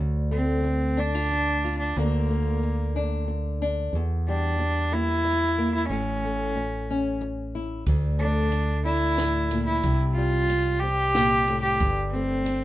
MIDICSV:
0, 0, Header, 1, 6, 480
1, 0, Start_track
1, 0, Key_signature, -1, "minor"
1, 0, Tempo, 656455
1, 1433, Time_signature, 3, 2, 24, 8
1, 9245, End_track
2, 0, Start_track
2, 0, Title_t, "Cello"
2, 0, Program_c, 0, 42
2, 235, Note_on_c, 0, 60, 79
2, 722, Note_on_c, 0, 62, 95
2, 733, Note_off_c, 0, 60, 0
2, 1306, Note_off_c, 0, 62, 0
2, 1310, Note_on_c, 0, 62, 77
2, 1441, Note_on_c, 0, 58, 74
2, 1452, Note_off_c, 0, 62, 0
2, 2398, Note_off_c, 0, 58, 0
2, 3137, Note_on_c, 0, 62, 87
2, 3603, Note_on_c, 0, 64, 102
2, 3614, Note_off_c, 0, 62, 0
2, 4199, Note_off_c, 0, 64, 0
2, 4205, Note_on_c, 0, 64, 85
2, 4304, Note_off_c, 0, 64, 0
2, 4309, Note_on_c, 0, 61, 76
2, 5243, Note_off_c, 0, 61, 0
2, 5988, Note_on_c, 0, 62, 80
2, 6442, Note_off_c, 0, 62, 0
2, 6464, Note_on_c, 0, 64, 95
2, 7039, Note_off_c, 0, 64, 0
2, 7063, Note_on_c, 0, 64, 80
2, 7291, Note_off_c, 0, 64, 0
2, 7411, Note_on_c, 0, 65, 96
2, 7886, Note_on_c, 0, 67, 105
2, 7897, Note_off_c, 0, 65, 0
2, 8492, Note_off_c, 0, 67, 0
2, 8496, Note_on_c, 0, 67, 91
2, 8726, Note_off_c, 0, 67, 0
2, 8858, Note_on_c, 0, 60, 83
2, 9245, Note_off_c, 0, 60, 0
2, 9245, End_track
3, 0, Start_track
3, 0, Title_t, "Nylon-string guitar"
3, 0, Program_c, 1, 24
3, 0, Note_on_c, 1, 38, 56
3, 229, Note_on_c, 1, 57, 47
3, 462, Note_off_c, 1, 38, 0
3, 711, Note_on_c, 1, 62, 52
3, 838, Note_off_c, 1, 62, 0
3, 838, Note_on_c, 1, 65, 42
3, 1193, Note_off_c, 1, 65, 0
3, 1202, Note_on_c, 1, 65, 53
3, 1403, Note_off_c, 1, 57, 0
3, 1409, Note_off_c, 1, 65, 0
3, 1435, Note_on_c, 1, 38, 59
3, 1438, Note_on_c, 1, 50, 51
3, 1444, Note_on_c, 1, 58, 51
3, 1452, Note_on_c, 1, 62, 56
3, 1684, Note_off_c, 1, 58, 0
3, 1687, Note_on_c, 1, 58, 51
3, 1915, Note_off_c, 1, 38, 0
3, 2155, Note_off_c, 1, 62, 0
3, 2163, Note_on_c, 1, 62, 53
3, 2637, Note_off_c, 1, 62, 0
3, 2646, Note_on_c, 1, 62, 56
3, 2852, Note_off_c, 1, 58, 0
3, 2877, Note_off_c, 1, 50, 0
3, 2880, Note_off_c, 1, 62, 0
3, 2890, Note_on_c, 1, 40, 62
3, 3133, Note_on_c, 1, 55, 51
3, 3344, Note_off_c, 1, 40, 0
3, 3597, Note_on_c, 1, 58, 50
3, 4073, Note_off_c, 1, 58, 0
3, 4082, Note_on_c, 1, 58, 50
3, 4290, Note_off_c, 1, 58, 0
3, 4317, Note_on_c, 1, 45, 64
3, 4324, Note_off_c, 1, 55, 0
3, 4566, Note_on_c, 1, 57, 46
3, 4793, Note_off_c, 1, 45, 0
3, 5049, Note_on_c, 1, 61, 50
3, 5521, Note_on_c, 1, 64, 54
3, 5729, Note_off_c, 1, 64, 0
3, 5731, Note_off_c, 1, 57, 0
3, 5733, Note_off_c, 1, 61, 0
3, 5764, Note_on_c, 1, 38, 60
3, 6004, Note_on_c, 1, 57, 49
3, 6222, Note_off_c, 1, 38, 0
3, 6474, Note_on_c, 1, 62, 54
3, 6714, Note_on_c, 1, 45, 51
3, 6951, Note_off_c, 1, 45, 0
3, 6954, Note_on_c, 1, 46, 55
3, 7170, Note_off_c, 1, 57, 0
3, 7190, Note_off_c, 1, 46, 0
3, 7193, Note_off_c, 1, 62, 0
3, 7193, Note_on_c, 1, 48, 61
3, 7440, Note_on_c, 1, 55, 51
3, 7667, Note_off_c, 1, 48, 0
3, 7922, Note_on_c, 1, 60, 51
3, 8152, Note_on_c, 1, 46, 54
3, 8392, Note_off_c, 1, 46, 0
3, 8396, Note_on_c, 1, 45, 57
3, 8607, Note_off_c, 1, 60, 0
3, 8633, Note_off_c, 1, 45, 0
3, 8638, Note_on_c, 1, 43, 64
3, 8874, Note_off_c, 1, 55, 0
3, 8878, Note_on_c, 1, 57, 52
3, 9096, Note_off_c, 1, 43, 0
3, 9245, Note_off_c, 1, 57, 0
3, 9245, End_track
4, 0, Start_track
4, 0, Title_t, "Fingered electric bass"
4, 0, Program_c, 2, 33
4, 0, Note_on_c, 2, 38, 64
4, 1403, Note_off_c, 2, 38, 0
4, 1436, Note_on_c, 2, 38, 67
4, 2847, Note_off_c, 2, 38, 0
4, 2872, Note_on_c, 2, 40, 73
4, 4285, Note_off_c, 2, 40, 0
4, 4312, Note_on_c, 2, 33, 67
4, 5724, Note_off_c, 2, 33, 0
4, 5751, Note_on_c, 2, 38, 68
4, 7163, Note_off_c, 2, 38, 0
4, 7198, Note_on_c, 2, 36, 71
4, 8605, Note_off_c, 2, 36, 0
4, 8634, Note_on_c, 2, 31, 73
4, 9245, Note_off_c, 2, 31, 0
4, 9245, End_track
5, 0, Start_track
5, 0, Title_t, "Muted nylon-string guitar strokes"
5, 465, Note_on_c, 9, 29, 58
5, 538, Note_off_c, 9, 29, 0
5, 957, Note_on_c, 9, 29, 56
5, 1030, Note_off_c, 9, 29, 0
5, 1924, Note_on_c, 9, 29, 60
5, 1997, Note_off_c, 9, 29, 0
5, 2397, Note_on_c, 9, 29, 56
5, 2470, Note_off_c, 9, 29, 0
5, 3351, Note_on_c, 9, 29, 58
5, 3424, Note_off_c, 9, 29, 0
5, 3834, Note_on_c, 9, 29, 58
5, 3908, Note_off_c, 9, 29, 0
5, 4799, Note_on_c, 9, 29, 60
5, 4872, Note_off_c, 9, 29, 0
5, 5271, Note_on_c, 9, 29, 57
5, 5344, Note_off_c, 9, 29, 0
5, 6230, Note_on_c, 9, 29, 59
5, 6303, Note_off_c, 9, 29, 0
5, 7675, Note_on_c, 9, 29, 64
5, 7748, Note_off_c, 9, 29, 0
5, 9105, Note_on_c, 9, 29, 61
5, 9178, Note_off_c, 9, 29, 0
5, 9245, End_track
6, 0, Start_track
6, 0, Title_t, "Drums"
6, 5750, Note_on_c, 9, 51, 41
6, 5752, Note_on_c, 9, 36, 67
6, 5823, Note_off_c, 9, 51, 0
6, 5825, Note_off_c, 9, 36, 0
6, 6229, Note_on_c, 9, 51, 43
6, 6302, Note_off_c, 9, 51, 0
6, 6712, Note_on_c, 9, 38, 60
6, 6712, Note_on_c, 9, 51, 41
6, 6786, Note_off_c, 9, 38, 0
6, 6786, Note_off_c, 9, 51, 0
6, 6953, Note_on_c, 9, 51, 46
6, 7026, Note_off_c, 9, 51, 0
6, 7191, Note_on_c, 9, 51, 42
6, 7195, Note_on_c, 9, 36, 73
6, 7264, Note_off_c, 9, 51, 0
6, 7268, Note_off_c, 9, 36, 0
6, 7675, Note_on_c, 9, 51, 50
6, 7748, Note_off_c, 9, 51, 0
6, 8151, Note_on_c, 9, 38, 57
6, 8151, Note_on_c, 9, 51, 43
6, 8224, Note_off_c, 9, 38, 0
6, 8224, Note_off_c, 9, 51, 0
6, 8392, Note_on_c, 9, 51, 43
6, 8465, Note_off_c, 9, 51, 0
6, 8629, Note_on_c, 9, 51, 42
6, 8633, Note_on_c, 9, 36, 69
6, 8702, Note_off_c, 9, 51, 0
6, 8706, Note_off_c, 9, 36, 0
6, 9111, Note_on_c, 9, 51, 47
6, 9184, Note_off_c, 9, 51, 0
6, 9245, End_track
0, 0, End_of_file